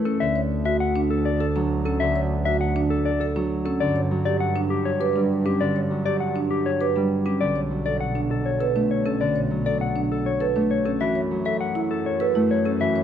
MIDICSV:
0, 0, Header, 1, 5, 480
1, 0, Start_track
1, 0, Key_signature, 2, "minor"
1, 0, Tempo, 600000
1, 166, Time_signature, 3, 2, 24, 8
1, 10429, End_track
2, 0, Start_track
2, 0, Title_t, "Clean electric guitar"
2, 0, Program_c, 0, 27
2, 42, Note_on_c, 0, 69, 56
2, 163, Note_on_c, 0, 76, 72
2, 201, Note_off_c, 0, 69, 0
2, 321, Note_off_c, 0, 76, 0
2, 525, Note_on_c, 0, 76, 72
2, 640, Note_off_c, 0, 76, 0
2, 643, Note_on_c, 0, 78, 56
2, 801, Note_off_c, 0, 78, 0
2, 884, Note_on_c, 0, 69, 68
2, 1003, Note_on_c, 0, 74, 55
2, 1041, Note_off_c, 0, 69, 0
2, 1123, Note_on_c, 0, 69, 58
2, 1161, Note_off_c, 0, 74, 0
2, 1281, Note_off_c, 0, 69, 0
2, 1482, Note_on_c, 0, 69, 56
2, 1600, Note_on_c, 0, 76, 75
2, 1640, Note_off_c, 0, 69, 0
2, 1760, Note_off_c, 0, 76, 0
2, 1963, Note_on_c, 0, 76, 73
2, 2083, Note_off_c, 0, 76, 0
2, 2086, Note_on_c, 0, 78, 58
2, 2242, Note_off_c, 0, 78, 0
2, 2323, Note_on_c, 0, 69, 69
2, 2443, Note_on_c, 0, 74, 61
2, 2481, Note_off_c, 0, 69, 0
2, 2561, Note_on_c, 0, 69, 65
2, 2601, Note_off_c, 0, 74, 0
2, 2720, Note_off_c, 0, 69, 0
2, 2922, Note_on_c, 0, 69, 55
2, 3043, Note_on_c, 0, 74, 79
2, 3080, Note_off_c, 0, 69, 0
2, 3201, Note_off_c, 0, 74, 0
2, 3403, Note_on_c, 0, 74, 71
2, 3520, Note_off_c, 0, 74, 0
2, 3524, Note_on_c, 0, 78, 57
2, 3681, Note_off_c, 0, 78, 0
2, 3762, Note_on_c, 0, 67, 64
2, 3883, Note_on_c, 0, 73, 56
2, 3921, Note_off_c, 0, 67, 0
2, 4002, Note_on_c, 0, 67, 55
2, 4041, Note_off_c, 0, 73, 0
2, 4161, Note_off_c, 0, 67, 0
2, 4366, Note_on_c, 0, 67, 53
2, 4484, Note_on_c, 0, 74, 70
2, 4522, Note_off_c, 0, 67, 0
2, 4641, Note_off_c, 0, 74, 0
2, 4844, Note_on_c, 0, 74, 68
2, 4960, Note_off_c, 0, 74, 0
2, 4963, Note_on_c, 0, 78, 50
2, 5121, Note_off_c, 0, 78, 0
2, 5205, Note_on_c, 0, 67, 63
2, 5327, Note_on_c, 0, 73, 57
2, 5361, Note_off_c, 0, 67, 0
2, 5449, Note_on_c, 0, 67, 54
2, 5482, Note_off_c, 0, 73, 0
2, 5603, Note_off_c, 0, 67, 0
2, 5805, Note_on_c, 0, 67, 46
2, 5925, Note_on_c, 0, 74, 65
2, 5962, Note_off_c, 0, 67, 0
2, 6081, Note_off_c, 0, 74, 0
2, 6285, Note_on_c, 0, 74, 66
2, 6401, Note_off_c, 0, 74, 0
2, 6404, Note_on_c, 0, 78, 50
2, 6561, Note_off_c, 0, 78, 0
2, 6647, Note_on_c, 0, 69, 59
2, 6765, Note_on_c, 0, 73, 53
2, 6802, Note_off_c, 0, 69, 0
2, 6882, Note_on_c, 0, 69, 52
2, 6922, Note_off_c, 0, 73, 0
2, 7041, Note_off_c, 0, 69, 0
2, 7128, Note_on_c, 0, 73, 48
2, 7248, Note_on_c, 0, 69, 51
2, 7283, Note_off_c, 0, 73, 0
2, 7366, Note_on_c, 0, 74, 66
2, 7403, Note_off_c, 0, 69, 0
2, 7522, Note_off_c, 0, 74, 0
2, 7729, Note_on_c, 0, 74, 67
2, 7846, Note_off_c, 0, 74, 0
2, 7849, Note_on_c, 0, 78, 53
2, 8003, Note_off_c, 0, 78, 0
2, 8094, Note_on_c, 0, 69, 61
2, 8209, Note_on_c, 0, 73, 51
2, 8245, Note_off_c, 0, 69, 0
2, 8327, Note_on_c, 0, 69, 52
2, 8363, Note_off_c, 0, 73, 0
2, 8482, Note_off_c, 0, 69, 0
2, 8567, Note_on_c, 0, 73, 53
2, 8684, Note_on_c, 0, 69, 51
2, 8722, Note_off_c, 0, 73, 0
2, 8806, Note_on_c, 0, 76, 62
2, 8841, Note_off_c, 0, 69, 0
2, 8962, Note_off_c, 0, 76, 0
2, 9167, Note_on_c, 0, 76, 68
2, 9281, Note_off_c, 0, 76, 0
2, 9285, Note_on_c, 0, 78, 57
2, 9441, Note_off_c, 0, 78, 0
2, 9526, Note_on_c, 0, 69, 65
2, 9649, Note_on_c, 0, 73, 55
2, 9682, Note_off_c, 0, 69, 0
2, 9768, Note_on_c, 0, 69, 54
2, 9803, Note_off_c, 0, 73, 0
2, 9923, Note_off_c, 0, 69, 0
2, 10007, Note_on_c, 0, 73, 56
2, 10127, Note_on_c, 0, 69, 51
2, 10162, Note_off_c, 0, 73, 0
2, 10247, Note_on_c, 0, 76, 76
2, 10282, Note_off_c, 0, 69, 0
2, 10402, Note_off_c, 0, 76, 0
2, 10429, End_track
3, 0, Start_track
3, 0, Title_t, "Marimba"
3, 0, Program_c, 1, 12
3, 44, Note_on_c, 1, 61, 70
3, 201, Note_off_c, 1, 61, 0
3, 284, Note_on_c, 1, 73, 55
3, 441, Note_off_c, 1, 73, 0
3, 524, Note_on_c, 1, 66, 62
3, 681, Note_off_c, 1, 66, 0
3, 765, Note_on_c, 1, 62, 74
3, 922, Note_off_c, 1, 62, 0
3, 1124, Note_on_c, 1, 69, 71
3, 1246, Note_on_c, 1, 62, 58
3, 1281, Note_off_c, 1, 69, 0
3, 1402, Note_off_c, 1, 62, 0
3, 1485, Note_on_c, 1, 61, 71
3, 1642, Note_off_c, 1, 61, 0
3, 1725, Note_on_c, 1, 73, 54
3, 1882, Note_off_c, 1, 73, 0
3, 1966, Note_on_c, 1, 66, 60
3, 2122, Note_off_c, 1, 66, 0
3, 2207, Note_on_c, 1, 62, 75
3, 2362, Note_off_c, 1, 62, 0
3, 2567, Note_on_c, 1, 69, 74
3, 2689, Note_on_c, 1, 62, 62
3, 2722, Note_off_c, 1, 69, 0
3, 2843, Note_off_c, 1, 62, 0
3, 2926, Note_on_c, 1, 61, 73
3, 3082, Note_off_c, 1, 61, 0
3, 3166, Note_on_c, 1, 73, 55
3, 3322, Note_off_c, 1, 73, 0
3, 3405, Note_on_c, 1, 67, 60
3, 3562, Note_off_c, 1, 67, 0
3, 3646, Note_on_c, 1, 62, 75
3, 3802, Note_off_c, 1, 62, 0
3, 4006, Note_on_c, 1, 71, 70
3, 4126, Note_on_c, 1, 62, 54
3, 4162, Note_off_c, 1, 71, 0
3, 4282, Note_off_c, 1, 62, 0
3, 4366, Note_on_c, 1, 61, 67
3, 4522, Note_off_c, 1, 61, 0
3, 4607, Note_on_c, 1, 73, 54
3, 4762, Note_off_c, 1, 73, 0
3, 4847, Note_on_c, 1, 67, 59
3, 5002, Note_off_c, 1, 67, 0
3, 5086, Note_on_c, 1, 62, 68
3, 5242, Note_off_c, 1, 62, 0
3, 5445, Note_on_c, 1, 71, 64
3, 5567, Note_on_c, 1, 62, 56
3, 5602, Note_off_c, 1, 71, 0
3, 5722, Note_off_c, 1, 62, 0
3, 5806, Note_on_c, 1, 61, 66
3, 5962, Note_off_c, 1, 61, 0
3, 6045, Note_on_c, 1, 73, 48
3, 6201, Note_off_c, 1, 73, 0
3, 6286, Note_on_c, 1, 69, 54
3, 6442, Note_off_c, 1, 69, 0
3, 6524, Note_on_c, 1, 62, 61
3, 6681, Note_off_c, 1, 62, 0
3, 6885, Note_on_c, 1, 71, 68
3, 7006, Note_on_c, 1, 62, 51
3, 7041, Note_off_c, 1, 71, 0
3, 7162, Note_off_c, 1, 62, 0
3, 7245, Note_on_c, 1, 61, 65
3, 7402, Note_off_c, 1, 61, 0
3, 7485, Note_on_c, 1, 73, 48
3, 7642, Note_off_c, 1, 73, 0
3, 7728, Note_on_c, 1, 69, 55
3, 7883, Note_off_c, 1, 69, 0
3, 7965, Note_on_c, 1, 62, 61
3, 8121, Note_off_c, 1, 62, 0
3, 8324, Note_on_c, 1, 71, 67
3, 8445, Note_on_c, 1, 62, 52
3, 8481, Note_off_c, 1, 71, 0
3, 8602, Note_off_c, 1, 62, 0
3, 8685, Note_on_c, 1, 61, 68
3, 8804, Note_on_c, 1, 66, 49
3, 8842, Note_off_c, 1, 61, 0
3, 8923, Note_on_c, 1, 73, 49
3, 8961, Note_off_c, 1, 66, 0
3, 9081, Note_off_c, 1, 73, 0
3, 9164, Note_on_c, 1, 69, 62
3, 9321, Note_off_c, 1, 69, 0
3, 9403, Note_on_c, 1, 64, 74
3, 9561, Note_off_c, 1, 64, 0
3, 9761, Note_on_c, 1, 71, 69
3, 9881, Note_on_c, 1, 64, 57
3, 9920, Note_off_c, 1, 71, 0
3, 10040, Note_off_c, 1, 64, 0
3, 10124, Note_on_c, 1, 61, 66
3, 10243, Note_on_c, 1, 66, 51
3, 10281, Note_off_c, 1, 61, 0
3, 10364, Note_on_c, 1, 73, 59
3, 10401, Note_off_c, 1, 66, 0
3, 10429, Note_off_c, 1, 73, 0
3, 10429, End_track
4, 0, Start_track
4, 0, Title_t, "Harp"
4, 0, Program_c, 2, 46
4, 0, Note_on_c, 2, 52, 66
4, 0, Note_on_c, 2, 57, 68
4, 165, Note_on_c, 2, 50, 61
4, 185, Note_off_c, 2, 52, 0
4, 1246, Note_on_c, 2, 54, 76
4, 1597, Note_off_c, 2, 50, 0
4, 1606, Note_on_c, 2, 50, 68
4, 2677, Note_off_c, 2, 54, 0
4, 2687, Note_on_c, 2, 54, 76
4, 2924, Note_off_c, 2, 57, 0
4, 3038, Note_off_c, 2, 50, 0
4, 3048, Note_on_c, 2, 50, 67
4, 3277, Note_off_c, 2, 54, 0
4, 3287, Note_on_c, 2, 54, 61
4, 4125, Note_on_c, 2, 55, 69
4, 4478, Note_off_c, 2, 50, 0
4, 4487, Note_on_c, 2, 50, 67
4, 4715, Note_off_c, 2, 54, 0
4, 4725, Note_on_c, 2, 54, 59
4, 5558, Note_off_c, 2, 55, 0
4, 5568, Note_on_c, 2, 55, 64
4, 5918, Note_off_c, 2, 50, 0
4, 5927, Note_on_c, 2, 50, 63
4, 5946, Note_off_c, 2, 55, 0
4, 6156, Note_off_c, 2, 54, 0
4, 6166, Note_on_c, 2, 54, 50
4, 7005, Note_on_c, 2, 57, 64
4, 7355, Note_off_c, 2, 50, 0
4, 7364, Note_on_c, 2, 50, 61
4, 7596, Note_off_c, 2, 54, 0
4, 7606, Note_on_c, 2, 54, 50
4, 8438, Note_off_c, 2, 57, 0
4, 8447, Note_on_c, 2, 57, 66
4, 8808, Note_on_c, 2, 52, 62
4, 8824, Note_off_c, 2, 50, 0
4, 9038, Note_off_c, 2, 54, 0
4, 9048, Note_on_c, 2, 54, 54
4, 9875, Note_off_c, 2, 57, 0
4, 9885, Note_on_c, 2, 57, 74
4, 10237, Note_off_c, 2, 52, 0
4, 10247, Note_on_c, 2, 52, 64
4, 10429, Note_off_c, 2, 52, 0
4, 10429, Note_off_c, 2, 54, 0
4, 10429, Note_off_c, 2, 57, 0
4, 10429, End_track
5, 0, Start_track
5, 0, Title_t, "Double bass section"
5, 0, Program_c, 3, 48
5, 167, Note_on_c, 3, 38, 58
5, 2918, Note_off_c, 3, 38, 0
5, 3048, Note_on_c, 3, 43, 64
5, 5799, Note_off_c, 3, 43, 0
5, 5925, Note_on_c, 3, 35, 54
5, 8677, Note_off_c, 3, 35, 0
5, 8807, Note_on_c, 3, 42, 59
5, 10429, Note_off_c, 3, 42, 0
5, 10429, End_track
0, 0, End_of_file